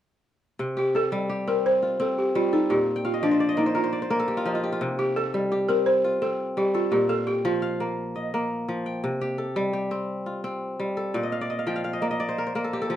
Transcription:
0.59 C3
0.77 G4
0.95 A4
1.12 G3
1.29 G4
1.47 C4 A#4
1.66 C5
1.83 F4
2.00 C4 A4
2.18 G4
2.35 G3 F4
2.48 F4
2.53 D#4 A4
2.70 A#2 G4
2.96 G5
3.05 F4 F5
3.14 D#5
3.23 F3 D4 D5
3.31 C5
3.40 D5
3.49 D#5
3.57 A#3 D#4 D5
3.66 C5
3.75 F4 A#4
3.84 C5
3.93 D5
4.02 C5
4.10 A#3 A#4
4.19 A4
4.28 G4
4.37 F4
4.46 F3 D#4
4.55 F4
4.63 G4
4.72 F4
4.81 C3
4.99 G4
5.16 A4
5.34 G3
5.52 G4
5.69 C4 A#4
5.86 C5
6.04 F4
6.22 C4 A4
6.57 G3 G4
6.74 F4 A4
6.92 A#2 G4
7.09 A4 F5
7.27 G4 G5
7.45 F3 F4
7.62 F5
7.80 A#3
8.16 D#5
8.34 A#3
8.68 F3
8.86 G5
9.04 C3
9.21 G4
9.38 A4
9.56 G3
9.73 G4
9.91 C4
10.26 F4
10.44 C4
10.80 G3
10.97 A4
11.14 A#2 D5
11.23 D#5
11.32 F5
11.41 D5
11.50 D#5
11.59 F5
11.67 F3 G5
11.76 F5
11.84 F5
11.93 D#5
12.02 A#3 D5
12.11 D#5
12.20 D5
12.29 C5
12.38 A#4
12.47 C5
12.55 A#3 A#4
12.64 A4
12.73 G4
12.82 A4
12.90 F3 G4

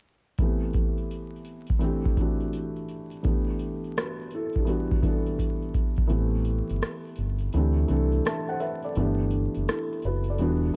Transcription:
0.38 E3 A3 B3, kick, closed hi-hat
0.42 C4 G4
0.73 kick, closed hi-hat
0.98 closed hi-hat
1.11 closed hi-hat
1.36 closed hi-hat
1.45 closed hi-hat
1.67 kick, closed hi-hat
1.79 E3 A3 C4 D4, closed hi-hat
1.83 G4
2.06 kick
2.17 E3 A3 C4 D4 F#4, kick, closed hi-hat
2.40 closed hi-hat
2.53 closed hi-hat
2.76 closed hi-hat
2.89 closed hi-hat
3.11 closed hi-hat
3.23 E3 A3 B3 D4 G4, kick, closed hi-hat
3.59 closed hi-hat
3.84 closed hi-hat
3.97 F#4 B4, cross-stick, closed hi-hat
4.22 closed hi-hat
4.31 E4 A4, closed hi-hat
4.53 kick, closed hi-hat
4.58 D4 G4
4.65 E3 G3 B3 D4 F#4, closed hi-hat
4.91 kick
5.02 E3 G3 B3 D4 A4, kick, closed hi-hat
5.26 closed hi-hat
5.39 kick, closed hi-hat
5.62 closed hi-hat
5.74 kick, closed hi-hat
5.96 kick, closed hi-hat
6.07 A1 E3 A3 B3 C4 G4, closed hi-hat
6.45 closed hi-hat
6.70 G1, closed hi-hat
6.82 cross-stick, closed hi-hat
7.07 closed hi-hat
7.16 G1, closed hi-hat
7.39 closed hi-hat
7.53 D2 E3 A3 C4 D4, closed hi-hat
7.57 G4
7.88 C2 E3 A3 C4 D4 A4, closed hi-hat
8.12 closed hi-hat
8.25 E5 A5, cross-stick, closed hi-hat
8.48 C5 F#5, closed hi-hat
8.60 B4 E5, closed hi-hat
8.83 A4 D5, closed hi-hat
8.96 G1 E3 A3 B3 D4, closed hi-hat
9.00 G4
9.31 closed hi-hat
9.55 F#1, closed hi-hat
9.68 E4 A4, cross-stick, closed hi-hat
9.93 closed hi-hat
10.02 F#1 B4, closed hi-hat
10.06 F#4
10.24 closed hi-hat
10.30 A4 D5
10.38 E1 E3 G3 B3 D4, closed hi-hat
10.43 F#4

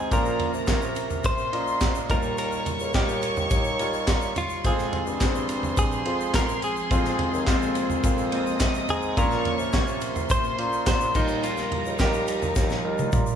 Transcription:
Already playing: G#3 C4 F4 G#4 C5
0.11 A#2 F3 A#3 C#4 F4 A#4 C5 A#5, kick, ride, shaker
0.26 shaker
0.39 floor tom, ride
0.53 C3, shaker
0.67 A#3 F4 C5 C#5, kick, snare, clap, ride, shaker
0.82 shaker
0.95 ride, shaker
1.10 floor tom, shaker
1.24 C5 C6, kick, ride, shaker
1.38 shaker
1.52 A#2 A#3 C#4 F4 D#5, ride
1.67 shaker
1.81 kick, snare, clap, ride, shaker
1.95 shaker
2.09 D#2 A#2 G3 D#4 F4 A#4 C#5 C#6, kick, floor tom, ride, shaker
2.23 shaker
2.38 A#4, ride, shaker
2.52 shaker
2.66 floor tom, ride, shaker
2.80 C#2, shaker
2.94 D#2 G3 D#4 F4 G4 A#4, kick, snare, clap, ride, shaker
3.09 shaker
3.22 ride, shaker
3.37 floor tom, shaker
3.50 D#2, kick, ride, shaker
3.64 shaker
3.79 G3 D#4 F4 C#5, ride, shaker
3.94 shaker
4.07 A#2, kick, snare, clap, ride, shaker
4.21 shaker
4.36 F4, floor tom, ride, shaker
4.49 shaker
4.64 F2 C3 F3 G#3 C4 F4 G#4 C5 C6, kick, ride, shaker
4.78 snare, shaker
4.93 floor tom, ride
5.07 G2, shaker
5.21 C4 F4 G#4 C5, kick, snare, clap, ride, shaker
5.35 shaker
5.49 ride, shaker
5.63 floor tom, shaker
5.77 G#4, kick, ride, shaker
5.91 shaker
6.05 F2 G#3 C4 F4 G#4, ride
6.20 shaker
6.34 A#4, kick, snare, clap, ride, shaker
6.49 shaker
6.62 G#4, ride, shaker
6.76 shaker
6.90 F2 C3 G#3 A#3 C4 F4 C5, kick, ride, shaker
7.05 snare, shaker
7.19 floor tom, ride
7.33 D#2, shaker
7.47 F2 G#3 C4 F4 C5, kick, snare, clap, ride, shaker
7.62 shaker
7.75 ride, shaker
7.90 floor tom, shaker
8.04 F2, kick, ride, shaker
8.18 shaker
8.32 G#3 C4 F4 C5 D#5 D#6, ride
8.47 shaker
8.60 C3, kick, snare, clap, ride, shaker
8.74 shaker
8.88 G#2 G#4, floor tom, ride, shaker
9.02 shaker
9.17 A#2 F3 A#3 C#4 F4 A#4 C#5 C#6, kick, ride, shaker
9.31 snare, shaker
9.45 floor tom, ride
9.59 C3, shaker
9.73 A#3 F4 C#5, kick, snare, clap, ride, shaker
9.87 shaker
10.01 C5 C6, ride, shaker
10.16 floor tom, shaker
10.30 C5, kick, ride, shaker
10.43 shaker
10.58 A#2 A#3 C#4 F4 C5, ride
10.73 shaker
10.86 C5, kick, snare, clap, ride, shaker
11.00 shaker
11.15 D#2 A#2 F3 G3 D#4 F4 A#4 A#5, kick, crash, shaker
11.28 shaker
11.43 F4, ride, shaker
11.57 snare, shaker
11.72 floor tom, ride
11.85 C#2, shaker
11.99 D#2 G3 D#4 F4 G4 A#4, kick, snare, clap, ride, shaker
12.13 shaker
12.27 ride, shaker
12.42 floor tom, shaker
12.55 D#2, kick, snare, shaker
12.70 snare, shaker
12.85 G3 D#4 F4 A#4
12.98 high tom, shaker
13.12 A#2, kick, mid tom, shaker
13.26 shaker

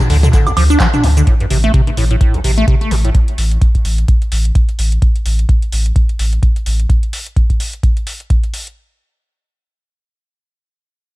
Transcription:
0.00 shaker
0.10 D2 D3, open hi-hat
0.23 D3, closed hi-hat, mid tom, shaker
0.33 D3, kick, clap, closed hi-hat, shaker
0.47 D2, closed hi-hat, high woodblock, shaker
0.57 D2 F3, open hi-hat, high woodblock
0.70 D4, closed hi-hat, shaker
0.80 F3, kick, clap, closed hi-hat, shaker
0.94 D4, closed hi-hat, mid tom, shaker
1.04 D2 D3, open hi-hat
1.17 D3, closed hi-hat, shaker
1.27 A2, kick, closed hi-hat
1.40 G2, closed hi-hat
1.51 A1 C3, open hi-hat
1.64 A3, closed hi-hat
1.74 C3, kick, closed hi-hat
1.87 G2, closed hi-hat
1.97 A1 A2, open hi-hat
2.11 A2, closed hi-hat
2.21 A2, kick, closed hi-hat
2.34 A1, closed hi-hat
2.44 A1 C3, open hi-hat
2.58 A3, closed hi-hat
2.68 C3, kick, closed hi-hat
2.81 A3, closed hi-hat
2.91 A1 A2, open hi-hat
3.04 A2, closed hi-hat
3.15 kick, closed hi-hat
3.28 closed hi-hat
3.38 A1, open hi-hat
3.51 closed hi-hat
3.61 kick, closed hi-hat
3.75 kick, closed hi-hat
3.85 A1, open hi-hat
3.98 closed hi-hat
4.08 kick, closed hi-hat
4.22 closed hi-hat
4.32 A1, open hi-hat
4.45 closed hi-hat
4.55 kick, closed hi-hat
4.69 closed hi-hat
4.79 A1, open hi-hat
4.92 closed hi-hat
5.02 kick, closed hi-hat
5.16 closed hi-hat
5.25 A1, open hi-hat
5.39 closed hi-hat
5.49 kick, closed hi-hat
5.62 closed hi-hat
5.72 A1, open hi-hat
5.86 closed hi-hat
5.96 kick, closed hi-hat
6.09 closed hi-hat
6.19 A1, open hi-hat
6.33 closed hi-hat
6.43 kick, closed hi-hat
6.56 closed hi-hat
6.66 A1, open hi-hat
6.80 closed hi-hat
6.90 kick, closed hi-hat
7.03 closed hi-hat
7.13 open hi-hat
7.26 closed hi-hat
7.36 kick, closed hi-hat
7.50 kick, closed hi-hat
7.60 open hi-hat
7.73 closed hi-hat
7.83 kick, closed hi-hat
7.97 closed hi-hat
8.07 open hi-hat
8.20 closed hi-hat
8.30 kick, closed hi-hat
8.44 closed hi-hat
8.54 open hi-hat
8.67 closed hi-hat

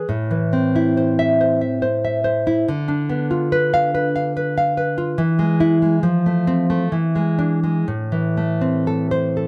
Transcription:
0.09 A2
0.31 E3
0.53 C4
0.76 E4
0.97 C5
1.19 E5
1.41 C5
1.61 E5
1.82 C5
2.05 E5
2.24 C5
2.47 E4
2.68 D3
2.88 D4
3.09 B3
3.31 F4
3.52 B4
3.74 F5
3.94 B4
4.16 F5
4.37 B4
4.58 F5
4.77 B4
4.98 F4
5.18 E3
5.39 G#3
5.60 E4
5.82 G#3
6.03 F3
6.26 A3
6.47 C4
6.70 A3
6.92 E3
7.16 G#3
7.39 D4
7.63 G#3
7.88 A2
8.12 E3
8.37 A3
8.61 C4
8.87 A4
9.11 C5
9.37 A4

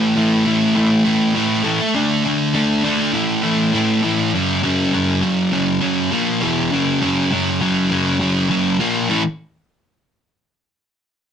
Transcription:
Already playing: A2 E3 A3
0.16 A2 E3 A3
0.44 A2 E3 A3
0.75 A2 E3 A3
1.05 A2 E3 A3
1.35 A2 E3 A3
1.64 A2 E3 A3
1.94 D3 A3 D4
2.25 D3 A3 D4
2.54 D3 A3 D4
2.84 D3 A3 D4
3.13 A2 E3 A3
3.43 A2 E3 A3
3.73 A2 E3 A3
4.03 A2 E3 A3
4.33 F#2 C#3 F#3
4.63 F#2 C#3 F#3
4.93 F#2 C#3 F#3
5.22 F#2 C#3 F#3
5.52 F#2 C#3 F#3
5.81 F#2 C#3 F#3
6.12 A#2 F3 A#3
6.41 E2 B2 E3
6.72 F#2 C#3 F#3
7.02 F#2 C#3 F#3
7.31 F#2 C#3 F#3
7.61 F#2 C#3 F#3
7.90 F#2 C#3 F#3
8.19 F#2 C#3 F#3
8.49 F#2 C#3 F#3
8.79 A#2 F3 A#3
9.09 A2 E3 A3

